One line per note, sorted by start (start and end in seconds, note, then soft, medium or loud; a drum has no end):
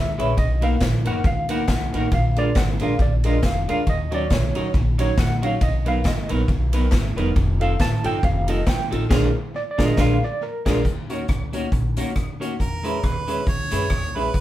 0.00 0.15 C#2 medium
0.00 0.35 E5 medium
0.18 0.35 A#1 medium
0.18 0.30 G#3 medium
0.18 0.30 C#4 medium
0.18 0.31 E4 loud
0.18 0.30 E4 medium
0.18 0.32 G#4 medium
0.18 0.30 B4 medium
0.18 0.32 C#5 loud
0.18 ride medium
0.37 0.75 B1 loud
0.37 0.63 D#5 loud
0.37 kick loud
0.37 ride medium
0.61 0.74 A#3 medium
0.61 0.75 D#4 loud
0.61 0.74 D#4 loud
0.61 0.74 F#4 medium
0.61 0.75 A#4 medium
0.61 0.74 A#4 medium
0.61 0.75 B4 loud
0.61 0.80 F5 loud
0.61 ride medium
0.80 1.02 A#1 loud
0.80 0.86 A#4 soft
0.80 0.86 B4 soft
0.80 kick loud
0.80 snare loud
0.80 clap loud
0.80 ride medium
1.05 1.22 F#1 medium
1.05 1.18 A#3 medium
1.05 1.18 D#4 medium
1.05 1.18 F#4 medium
1.05 1.19 A#4 medium
1.05 1.18 A#4 loud
1.05 1.19 B4 loud
1.05 1.26 F#5 loud
1.05 ride medium
1.24 1.62 C#2 loud
1.24 1.51 F5 loud
1.24 kick loud
1.24 ride medium
1.49 1.61 A#3 loud
1.49 1.62 D#4 medium
1.49 1.61 D#4 medium
1.49 1.62 F#4 loud
1.49 1.62 A#4 medium
1.49 1.62 A#4 loud
1.49 1.63 B4 loud
1.49 2.15 F#5 loud
1.49 ride medium
1.68 1.89 B1 medium
1.68 muted clean electric guitar stroke soft
1.68 kick loud
1.68 snare loud
1.68 clap loud
1.68 ride medium
1.92 2.09 A1 medium
1.92 2.05 A#3 medium
1.92 2.06 D#4 loud
1.92 2.06 D#4 medium
1.92 2.06 F#4 medium
1.92 2.06 A#4 medium
1.92 2.06 A#4 loud
1.92 2.06 B4 loud
1.92 ride medium
2.12 2.49 A#1 loud
2.12 2.36 F5 loud
2.12 kick loud
2.12 ride medium
2.36 2.49 G#3 medium
2.36 2.49 D4 loud
2.36 2.49 D4 medium
2.36 2.49 F4 medium
2.36 2.50 G#4 medium
2.36 2.50 A#4 medium
2.36 2.49 A#4 loud
2.36 2.57 D5 loud
2.36 ride medium
2.55 2.77 G#1 loud
2.55 2.68 F#5 loud
2.55 kick loud
2.55 snare loud
2.55 clap loud
2.55 ride medium
2.79 2.97 A#1 medium
2.79 2.92 G#3 medium
2.79 2.93 D4 medium
2.79 2.92 D4 medium
2.79 2.93 F4 medium
2.79 2.94 G#4 medium
2.79 2.94 A#4 loud
2.79 2.93 A#4 medium
2.79 3.01 F5 medium
2.79 ride medium
2.99 3.37 A#1 loud
2.99 3.12 D5 medium
2.99 kick loud
2.99 ride medium
3.23 3.36 G#3 medium
3.23 3.37 D4 medium
3.23 3.37 F4 loud
3.23 3.37 G#4 medium
3.23 3.37 A#4 loud
3.23 3.37 A#4 medium
3.23 3.45 D#5 medium
3.23 ride medium
3.43 3.64 F1 loud
3.43 3.69 F5 loud
3.43 muted clean electric guitar stroke medium
3.43 kick loud
3.43 snare loud
3.43 clap medium
3.43 ride medium
3.68 3.84 D2 medium
3.68 3.80 G#3 medium
3.68 3.81 D4 loud
3.68 3.80 D4 medium
3.68 3.80 F4 medium
3.68 3.81 G#4 medium
3.68 3.81 A#4 loud
3.68 3.80 A#4 medium
3.68 3.88 F5 medium
3.68 ride medium
3.87 4.33 D#2 loud
3.87 4.11 D#5 loud
3.87 kick loud
3.87 ride medium
4.11 4.23 F#3 medium
4.11 4.23 C#4 medium
4.11 4.24 D#4 medium
4.11 4.24 F#4 medium
4.11 4.24 A#4 medium
4.11 4.25 C#5 loud
4.11 4.31 D5 loud
4.11 ride medium
4.30 4.52 B1 loud
4.30 4.36 F#4 soft
4.30 4.36 C#5 soft
4.30 4.72 C#5 medium
4.30 kick loud
4.30 snare loud
4.30 clap loud
4.30 ride medium
4.55 4.72 C#2 medium
4.55 4.67 F#3 medium
4.55 4.67 C#4 medium
4.55 4.68 D#4 medium
4.55 4.67 D#4 loud
4.55 4.68 F#4 medium
4.55 4.67 A#4 loud
4.55 4.69 C#5 loud
4.55 ride medium
4.74 5.11 A#1 loud
4.74 kick loud
4.74 ride medium
4.98 5.10 F#3 medium
4.98 5.10 C#4 medium
4.98 5.12 D#4 medium
4.98 5.10 D#4 loud
4.98 5.12 F#4 medium
4.98 5.11 A#4 loud
4.98 5.12 C#5 loud
4.98 5.17 C#5 medium
4.98 ride medium
5.17 5.55 A#1 medium
5.17 5.44 F#5 loud
5.17 muted clean electric guitar stroke medium
5.17 kick loud
5.17 snare loud
5.17 clap medium
5.17 ride medium
5.42 5.54 F#3 medium
5.42 5.54 C#4 medium
5.42 5.55 D#4 medium
5.42 5.54 D#4 medium
5.42 5.55 F#4 medium
5.42 5.54 A#4 medium
5.42 5.56 C#5 loud
5.42 5.63 F5 loud
5.42 ride medium
5.61 6.05 B1 loud
5.61 5.85 D#5 loud
5.61 kick loud
5.61 ride medium
5.85 5.98 F#3 medium
5.85 5.98 B3 medium
5.85 5.99 D#4 loud
5.85 5.98 D#4 medium
5.85 5.99 A#4 medium
5.85 5.98 A#4 medium
5.85 5.99 B4 loud
5.85 6.07 F5 loud
5.85 ride medium
6.04 6.26 G#1 loud
6.04 6.10 A#4 soft
6.04 6.10 B4 soft
6.04 6.29 D#5 medium
6.04 kick loud
6.04 snare loud
6.04 clap medium
6.04 ride medium
6.29 6.46 A#1 medium
6.29 6.41 F#3 medium
6.29 6.42 B3 medium
6.29 6.42 D#4 loud
6.29 6.42 D#4 medium
6.29 6.43 A#4 medium
6.29 6.42 A#4 medium
6.29 6.43 B4 loud
6.29 ride medium
6.48 6.86 B1 loud
6.48 kick loud
6.48 ride medium
6.73 6.85 F#3 medium
6.73 6.85 B3 medium
6.73 6.86 D#4 loud
6.73 6.85 D#4 medium
6.73 6.86 A#4 medium
6.73 6.87 B4 loud
6.73 ride loud
6.92 7.13 G#1 loud
6.92 kick loud
6.92 snare loud
6.92 clap loud
6.92 ride medium
7.16 7.33 E1 medium
7.16 7.29 F#3 medium
7.16 7.29 B3 medium
7.16 7.30 D#4 loud
7.16 7.29 D#4 loud
7.16 7.30 A#4 medium
7.16 7.29 A#4 loud
7.16 7.30 B4 loud
7.16 ride medium
7.36 7.73 F1 loud
7.36 kick loud
7.36 ride medium
7.60 7.73 F3 medium
7.60 7.73 C4 medium
7.60 7.73 D#4 medium
7.60 7.73 F4 medium
7.60 7.74 A4 loud
7.60 7.73 A4 loud
7.60 7.80 F5 loud
7.60 ride medium
7.79 8.01 A1 loud
7.79 7.84 F4 soft
7.79 7.84 A4 soft
7.79 8.06 A5 loud
7.79 kick loud
7.79 snare loud
7.79 clap loud
7.79 ride medium
8.03 8.21 G1 medium
8.03 8.16 F3 medium
8.03 8.16 C4 medium
8.03 8.17 D#4 loud
8.03 8.16 D#4 loud
8.03 8.17 F4 medium
8.03 8.17 A4 loud
8.03 8.24 G5 loud
8.03 ride medium
8.23 8.60 F1 loud
8.23 8.49 F5 loud
8.23 kick loud
8.23 ride medium
8.47 8.60 F3 medium
8.47 8.60 C4 medium
8.47 8.60 D#4 loud
8.47 8.60 D#4 medium
8.47 8.61 F4 loud
8.47 8.61 A4 loud
8.47 8.60 A4 loud
8.47 8.68 D#5 medium
8.47 ride loud
8.67 8.88 C2 medium
8.67 8.91 G5 medium
8.67 kick loud
8.67 snare loud
8.67 clap medium
8.67 ride medium
8.91 9.08 A1 medium
8.91 9.03 F3 medium
8.91 9.03 C4 medium
8.91 9.04 D#4 medium
8.91 9.03 D#4 medium
8.91 9.05 F4 loud
8.91 9.03 A4 medium
8.91 9.05 A4 loud
8.91 ride medium
9.09 9.27 A#1 loud
9.09 9.27 G#3 loud
9.09 9.27 D4 loud
9.09 9.27 F4 loud
9.09 9.27 G#4 loud
9.09 9.27 A#4 loud
9.09 9.28 A#4 loud
9.09 kick loud
9.09 snare loud
9.09 crash medium
9.56 9.62 D5 loud
9.71 9.85 D5 loud
9.78 9.92 A#1 medium
9.78 9.91 G#3 loud
9.78 9.91 D4 loud
9.78 9.92 F4 loud
9.78 9.92 G#4 loud
9.78 9.92 A#4 loud
9.78 kick loud
9.78 snare loud
9.85 9.99 D#5 loud
9.97 10.15 A#1 loud
9.97 10.14 G#3 loud
9.97 10.14 D4 medium
9.97 10.15 D4 loud
9.97 10.15 F4 loud
9.97 10.15 G#4 loud
9.97 10.15 A#4 loud
9.97 10.24 F5 loud
9.97 kick loud
9.97 snare loud
10.24 10.43 D5 loud
10.43 10.83 A#4 medium
10.65 10.79 A#1 medium
10.65 10.79 G#3 loud
10.65 10.78 D4 loud
10.65 10.79 D4 loud
10.65 10.79 F4 loud
10.65 10.79 G#4 loud
10.65 10.79 A#4 loud
10.65 10.80 A#4 medium
10.65 kick medium
10.65 snare loud
10.65 crash medium
10.85 11.22 D#2 medium
10.85 kick loud
10.85 closed hi-hat medium
11.09 11.22 A#3 medium
11.09 11.22 C#4 medium
11.09 11.23 D#4 loud
11.09 11.23 F#4 medium
11.09 11.22 F#4 medium
11.09 11.22 A#4 medium
11.09 11.23 C#5 loud
11.09 closed hi-hat medium
11.28 11.66 C#2 loud
11.28 11.34 F#4 soft
11.28 11.34 C#5 soft
11.28 kick loud
11.28 cross-stick loud
11.28 closed hi-hat medium
11.53 11.65 A#3 medium
11.53 11.65 C#4 medium
11.53 11.66 D#4 medium
11.53 11.66 F#4 medium
11.53 11.66 A#4 medium
11.53 11.67 C#5 loud
11.53 closed hi-hat medium
11.72 11.93 A#1 loud
11.72 kick loud
11.72 closed hi-hat medium
11.97 12.16 C#2 medium
11.97 12.09 A#3 medium
11.97 12.09 C#4 medium
11.97 12.10 D#4 medium
11.97 12.10 F#4 medium
11.97 12.09 F#4 loud
11.97 12.09 A#4 loud
11.97 12.10 C#5 loud
11.97 closed hi-hat loud
12.16 12.53 D#2 medium
12.16 kick loud
12.16 cross-stick loud
12.16 closed hi-hat medium
12.40 12.52 A#3 medium
12.40 12.53 C#4 medium
12.40 12.53 D#4 medium
12.40 12.54 F#4 medium
12.40 12.53 F#4 medium
12.40 12.53 A#4 medium
12.40 12.54 C#5 medium
12.40 closed hi-hat medium
12.60 12.97 E2 loud
12.60 13.06 A#4 medium
12.60 kick loud
12.60 closed hi-hat medium
12.83 12.96 G#3 medium
12.83 12.96 C#4 medium
12.83 12.97 E4 loud
12.83 12.96 E4 medium
12.83 12.98 G#4 medium
12.83 12.96 B4 loud
12.83 12.98 C#5 loud
12.83 closed hi-hat medium
13.03 13.41 D#2 medium
13.03 13.09 G#4 soft
13.03 13.48 B4 medium
13.03 13.09 C#5 soft
13.03 kick loud
13.03 cross-stick loud
13.03 closed hi-hat medium
13.27 13.39 G#3 medium
13.27 13.40 C#4 medium
13.27 13.41 E4 medium
13.27 13.40 E4 medium
13.27 13.41 G#4 medium
13.27 13.40 B4 medium
13.27 13.42 C#5 medium
13.27 closed hi-hat medium
13.47 13.68 C#2 medium
13.47 14.19 C#5 loud
13.47 kick loud
13.47 closed hi-hat medium
13.71 13.88 F#2 medium
13.71 13.83 G#3 medium
13.71 13.84 C#4 medium
13.71 13.85 E4 loud
13.71 13.84 E4 medium
13.71 13.85 G#4 medium
13.71 13.84 B4 medium
13.71 13.85 C#5 loud
13.71 closed hi-hat loud
13.90 14.16 E2 medium
13.90 kick loud
13.90 cross-stick loud
13.90 closed hi-hat medium
14.15 14.32 A#1 medium
14.15 14.27 G#3 medium
14.15 14.28 C#4 medium
14.15 14.29 E4 medium
14.15 14.28 E4 medium
14.15 14.29 G#4 medium
14.15 14.28 B4 medium
14.15 14.40 B4 loud
14.15 14.29 C#5 loud
14.15 open hi-hat soft
14.34 14.40 B1 loud
14.34 kick loud
14.34 closed hi-hat medium